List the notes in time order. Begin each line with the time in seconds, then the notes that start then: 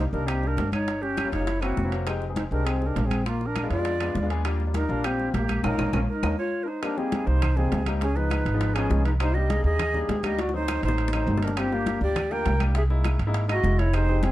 0.12 C2 G3 A#3 D4 D#4 A#4, high bongo
0.27 C4 G4, high bongo, high conga, high timbale, claves
0.43 high bongo, high conga
0.47 D4 A#4
0.57 G1, high bongo, low bongo, high conga, high timbale, low timbale
0.72 D#4 C#5, high conga, high timbale, claves
0.87 high bongo, high conga, high timbale
1.02 C#4 G4, high bongo, high conga
1.17 high bongo, high conga, high timbale, claves
1.24 G3 A#3 C#4 F4
1.32 F#1 D#4 C#5, high bongo, high conga, high timbale
1.40 G3 A#3 C#4 F4
1.47 E4 C#5, high bongo, high conga, high timbale
1.62 A#3 C4 C#4 E4 F#4, high bongo, high conga, high timbale, claves
1.77 F1, high bongo, low bongo, high conga
1.85 A#3 C4 C#4 E4
1.92 A#3 C4 C#4 F#4, high conga, high timbale
2.07 G#3 C4 D#4 G4, high bongo, high conga, high timbale, claves
2.22 high bongo, high conga
2.29 G#3 C4 D#4 G#4
2.36 D#4 C5, high bongo, high conga, high timbale
2.51 C2 G#3 C4 D4 D#4 G4 A#4, high bongo
2.65 C4 G#4, high bongo, high conga, high timbale, claves
2.82 high bongo, high conga
2.86 D4 A#4
2.96 A#1, high bongo, low bongo, high conga, high timbale, low timbale
3.06 C4 G#4
3.11 high conga, high timbale, claves
3.25 A#3 F4, high bongo, high timbale
3.41 high bongo, high conga
3.46 D4 A#4
3.56 high bongo, high conga, high timbale, claves
3.63 G#3 B3 D4 F4
3.70 F2 F4 D5, high bongo, high conga, high timbale
3.78 G#3 B3 D4 F4
3.85 high bongo, high conga, high timbale
4.00 G#3 B3 D4 F4, high bongo, high conga, high timbale, claves
4.15 D#2, high bongo, low bongo, high conga
4.23 G#3 B3 D4 F4
4.30 G#3 B3 D4 G#4, high timbale
4.45 G3 A#3 D4 F4, high bongo, high conga, high timbale, claves
4.60 high bongo, high conga
4.67 G3 A#3 D4 F4
4.74 D#4 A#4, high bongo, high conga, high timbale
4.89 A#1 G3 A#3 D4 F4 A#4, high bongo
5.04 C4 G4, high bongo, high conga, high timbale, claves
5.19 high bongo, high conga
5.33 A#1 A#3 G4, high bongo, low bongo, high conga, high timbale, low timbale
5.49 high conga, high timbale, claves
5.64 A#1 A#3 C#4 D#4 F4 A#4, high bongo, high conga, high timbale, claves
5.78 A#1 A#3 C#4 F4, high bongo, high conga, high timbale, claves
5.93 A#1 A#3 C#4 F4 A#4, high bongo, high conga, high timbale, claves
6.09 D#4 A#4
6.23 D#2 A#3 C#4 D#4, high bongo, high conga, high timbale, claves
6.38 F4 C#5
6.63 D4 A#4
6.68 D#4 C5
6.82 G3 A#3 C4 D4 D#4 A#4, high bongo, high conga, high timbale, claves
6.97 G3 A#3 C4 D#4 G#4, high bongo, high conga
7.12 high bongo, high conga, high timbale
7.27 C2 D#4 C5, high bongo
7.42 high bongo, high conga, low conga, high timbale, claves
7.57 G3 A#3 C4 D#4 G#4, high bongo, high conga, low conga
7.72 C#2, high bongo, low bongo, high conga, high timbale, low timbale
7.86 G3 A#3 C4 D#4, high conga, high timbale, claves
8.01 C#4 G#4, high bongo, high conga, high timbale
8.15 F3 G#3 B3 D#4 B4, high bongo, high conga
8.30 high bongo, high conga, high timbale, claves
8.45 G#1, high bongo, high conga, high timbale
8.54 F3 G#3 B3 D#4
8.60 high bongo, high conga, high timbale
8.74 F3 G#3 B3 C#4 D#4 G#4, high bongo, high conga, high timbale, claves
8.90 C2 F3 G#3 B3 D#4, high bongo, low bongo, high conga
9.05 D#4 B4, high conga, high timbale
9.20 G3 A#3 D4 D#4 C5, high bongo, high conga, high timbale, claves
9.34 G3 A#3 D4 D#4 G4 D#5, high bongo, high conga
9.49 G#4 D#5, high bongo, high conga, high timbale
9.64 D#2 G#4 D#5, high bongo
9.79 high bongo, high conga, low conga, high timbale, claves
9.94 G3 A#3 D4 D#4, high bongo, high conga, low conga
10.09 D2, high bongo, low bongo, high conga, high timbale, low timbale
10.23 G3 A#3 D4 D#4 G4 D#5, high conga, high timbale, claves
10.38 F#4 D5, high bongo, high conga, high timbale
10.49 high bongo
10.53 F#3 A3 C4 D#4 C5, high conga
10.68 high bongo, high conga, high timbale, claves
10.83 A1 D#4 C5, high conga, high timbale
10.88 F#3 A3 C4 D#4, low bongo
10.98 high conga, high timbale
11.08 low bongo
11.13 F#3 A3 C4 D#4 C5, high conga, high timbale, claves
11.27 G1 F#3 A3 C4 D#4, high conga, low timbale
11.37 low bongo
11.43 D4 A#4, high conga, high timbale
11.48 low bongo
11.57 G3 A#3 C4 D4 F4 G4, high bongo, high conga, high timbale, claves
11.72 G3 A#3 D4 F4 G4, high bongo, high conga
11.86 high bongo, high conga, high timbale
12.01 D2 G4 D5, high bongo
12.16 high bongo, high conga, low conga, high timbale, claves
12.31 G3 A#3 D4 F4 A#4 G5, high bongo, high conga
12.46 C2, high bongo, low bongo, high conga, high timbale, low timbale
12.60 G3 A#3 D4 G4, high conga, high timbale, claves
12.75 G#4 E5, high bongo, high conga, high timbale
12.90 G#3 A#3 D#4 E4, high bongo, high conga
13.04 high bongo, high conga, high timbale, claves
13.19 G#1, high bongo, high conga, high timbale
13.27 G#3 A#3 D#4 E4
13.34 high bongo, high conga, high timbale
13.48 G#3 A#3 D#4 E4 F#4 D#5, high bongo, high conga, high timbale, claves
13.63 F1 G#3 A#3 D#4 E4, high bongo, low bongo, high conga
13.79 E4 C#5, high conga, high timbale
13.93 G#3 C4 D#4 G4 C5, high bongo, high conga, high timbale, claves
14.09 G#3 C4 D#4 G4, high bongo, high conga
14.23 C4 G#4, high bongo, high conga, high timbale